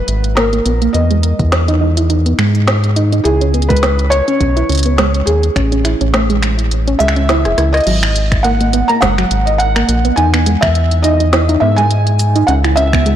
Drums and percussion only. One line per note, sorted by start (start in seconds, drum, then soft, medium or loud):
0.08 closed hi-hat medium
0.24 closed hi-hat soft
0.37 snare loud
0.37 closed hi-hat medium
0.53 closed hi-hat soft
0.66 closed hi-hat medium
0.82 closed hi-hat soft
0.94 closed hi-hat medium
1.11 closed hi-hat soft
1.23 closed hi-hat medium
1.39 kick loud
1.39 closed hi-hat soft
1.52 snare loud
1.52 closed hi-hat medium
1.68 closed hi-hat soft
1.97 closed hi-hat medium
2.10 closed hi-hat medium
2.26 closed hi-hat soft
2.39 finger snap medium
2.55 closed hi-hat soft
2.68 snare loud
2.68 closed hi-hat medium
2.84 closed hi-hat soft
2.96 closed hi-hat medium
3.12 closed hi-hat soft
3.25 closed hi-hat medium
3.41 closed hi-hat soft
3.54 closed hi-hat soft
3.62 closed hi-hat soft
3.70 kick loud
3.70 closed hi-hat medium
3.76 closed hi-hat medium
3.83 snare loud
3.83 closed hi-hat medium
3.99 closed hi-hat soft
4.12 closed hi-hat medium
4.28 closed hi-hat soft
4.41 kick medium
4.41 closed hi-hat medium
4.57 closed hi-hat soft
4.69 closed hi-hat soft
4.72 closed hi-hat soft
4.75 closed hi-hat medium
4.78 closed hi-hat medium
4.79 closed hi-hat medium
4.83 closed hi-hat medium
4.86 closed hi-hat soft
4.98 snare loud
4.98 closed hi-hat medium
5.14 closed hi-hat soft
5.27 closed hi-hat medium
5.43 closed hi-hat soft
5.56 finger snap soft
5.56 kick medium
5.56 closed hi-hat medium
5.72 closed hi-hat soft
5.85 finger snap soft
5.85 closed hi-hat medium
6.01 closed hi-hat soft
6.14 snare loud
6.14 closed hi-hat medium
6.30 closed hi-hat soft
6.43 finger snap medium
6.43 closed hi-hat medium
6.59 closed hi-hat soft
6.71 closed hi-hat medium
6.88 closed hi-hat soft
7.00 closed hi-hat medium
7.08 finger snap medium
7.16 closed hi-hat soft
7.29 snare loud
7.29 closed hi-hat medium
7.45 cross-stick soft
7.45 closed hi-hat soft
7.58 cross-stick medium
7.58 closed hi-hat medium
7.74 cross-stick medium
7.74 closed hi-hat soft
7.77 closed hi-hat soft
7.80 closed hi-hat soft
7.84 closed hi-hat soft
7.87 closed hi-hat medium
7.87 crash loud
8.03 finger snap medium
8.03 closed hi-hat soft
8.16 closed hi-hat medium
8.32 finger snap medium
8.32 kick loud
8.32 closed hi-hat soft
8.44 closed hi-hat medium
8.61 closed hi-hat soft
8.73 closed hi-hat loud
8.89 closed hi-hat soft
9.02 kick medium
9.02 snare loud
9.02 closed hi-hat medium
9.02 shaker medium
9.18 finger snap medium
9.18 closed hi-hat soft
9.31 closed hi-hat loud
9.47 closed hi-hat soft
9.60 closed hi-hat medium
9.76 finger snap medium
9.76 closed hi-hat soft
9.89 closed hi-hat medium
10.05 closed hi-hat soft
10.17 closed hi-hat medium
10.34 finger snap medium
10.34 closed hi-hat soft
10.46 closed hi-hat medium
10.62 finger snap medium
10.62 kick loud
10.62 closed hi-hat soft
10.75 closed hi-hat medium
10.91 closed hi-hat soft
11.04 closed hi-hat loud
11.20 closed hi-hat soft
11.33 snare loud
11.33 closed hi-hat medium
11.49 closed hi-hat soft
11.78 closed hi-hat soft
11.91 closed hi-hat medium
12.07 closed hi-hat soft
12.19 closed hi-hat loud
12.19 shaker medium
12.36 closed hi-hat soft
12.48 closed hi-hat medium
12.64 finger snap medium
12.64 closed hi-hat soft
12.77 closed hi-hat medium
12.93 finger snap medium
12.93 kick loud
12.93 closed hi-hat soft
13.06 closed hi-hat medium